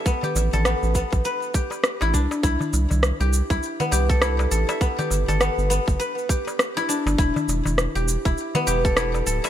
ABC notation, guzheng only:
X:1
M:4/4
L:1/16
Q:"Swing 16ths" 1/4=101
K:Em
V:1 name="Guzheng"
B, G2 A B,2 B,2 B z G z2 E D z | E z4 G2 E z B, G A E z A e | B, G2 A B,2 B,2 B z G z2 E D z | E z4 G2 E z B, G A E z A e |]